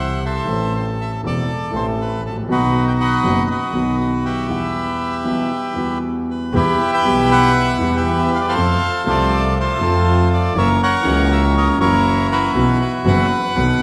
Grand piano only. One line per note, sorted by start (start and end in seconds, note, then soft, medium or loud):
0.00 0.44 C2 medium
0.00 0.44 C3 medium
0.00 0.43 E3 medium
0.00 0.44 G3 medium
0.00 0.44 C4 medium
0.00 0.45 G4 medium
0.45 1.20 A1 medium
0.45 1.20 A2 medium
0.45 1.19 E3 medium
0.45 1.19 A3 medium
0.45 1.20 C4 medium
0.49 1.21 A4 medium
1.23 1.45 E1 medium
1.23 1.45 E2 medium
1.23 1.44 E3 medium
1.23 1.45 A3 medium
1.23 1.45 C4 medium
1.23 1.45 A4 medium
1.71 2.35 A1 medium
1.71 2.45 A2 medium
1.71 2.44 E3 medium
1.71 2.44 A3 medium
1.71 2.45 C4 medium
1.75 2.46 A4 medium
2.30 2.36 G#1 soft
2.36 2.42 A1 medium
2.42 2.49 A#1 medium
2.46 3.20 B1 medium
2.46 3.20 B2 medium
2.46 3.19 D#3 medium
2.46 3.20 F#3 medium
2.46 3.20 B3 medium
2.46 3.21 F#4 medium
3.23 3.45 F#1 medium
3.23 3.45 F#2 medium
3.23 3.45 D#3 medium
3.23 3.45 F#3 medium
3.23 3.45 B3 medium
3.23 3.45 F#4 medium
3.71 4.45 B1 medium
3.71 4.45 B2 medium
3.71 4.44 D#3 medium
3.71 4.45 F#3 medium
3.71 4.46 B3 medium
3.75 4.46 F#4 medium
4.47 5.21 E2 medium
4.47 5.21 E3 medium
4.47 5.20 G3 medium
4.47 5.21 B3 medium
4.47 5.22 F#5 medium
5.24 5.46 B1 medium
5.24 5.46 B2 medium
5.24 5.46 E3 medium
5.24 5.46 G3 medium
5.24 5.46 B3 medium
5.24 5.46 F#4 medium
5.75 6.50 E2 medium
5.75 6.50 E3 medium
5.75 6.49 G3 medium
5.75 6.50 B3 medium
5.75 6.51 F#4 medium
6.53 6.75 E2 medium
6.53 6.75 E3 medium
6.53 6.75 G3 medium
6.53 6.75 B3 medium
6.53 6.75 G4 medium
7.03 7.77 B1 medium
7.03 7.77 B2 medium
7.03 7.76 E3 medium
7.03 7.77 G3 medium
7.03 7.77 B3 medium
7.03 7.78 G4 medium
7.79 8.52 E2 medium
7.79 8.52 E3 medium
7.79 8.52 G3 medium
7.79 8.53 B3 medium
7.83 8.53 G4 medium
8.56 8.77 F2 medium
8.56 8.77 F3 medium
8.56 8.77 A3 medium
8.56 8.77 C4 medium
8.56 8.77 A4 medium
9.04 9.78 C2 medium
9.04 9.78 C3 medium
9.04 9.76 F3 medium
9.04 9.77 A3 medium
9.04 9.78 C4 medium
9.04 9.78 A4 medium
9.79 10.52 F2 medium
9.79 10.52 F3 medium
9.79 10.51 A3 medium
9.79 10.52 C4 medium
9.79 10.53 A4 medium
10.54 10.76 F#2 medium
10.54 10.76 E3 medium
10.54 10.76 F#3 medium
10.54 10.76 A#3 medium
10.54 10.76 C#4 medium
10.54 10.76 F#4 medium
11.03 11.76 C#2 loud
11.03 11.76 C#3 loud
11.03 11.75 E3 medium
11.03 11.76 A#3 medium
11.03 11.76 C#4 medium
11.03 11.77 F#4 medium
11.78 12.51 F#2 medium
11.78 12.50 E3 medium
11.78 12.51 F#3 medium
11.78 12.51 A#3 medium
11.78 12.51 C#4 medium
11.78 12.52 F#4 medium
12.55 12.76 B1 medium
12.55 12.76 B2 medium
12.55 12.76 E3 medium
12.55 12.76 F#3 medium
12.55 12.76 B3 medium
12.55 12.76 F#4 medium
13.04 13.26 F#1 medium
13.04 13.26 F#2 medium
13.04 13.26 E3 medium
13.04 13.26 F#3 medium
13.04 13.26 B3 medium
13.04 13.26 F#4 medium
13.55 13.77 B1 medium
13.55 13.77 B2 medium
13.55 13.77 D#3 medium
13.55 13.77 F#3 medium
13.55 13.77 B3 medium
13.55 13.77 F#4 medium
13.79 13.82 D#3 medium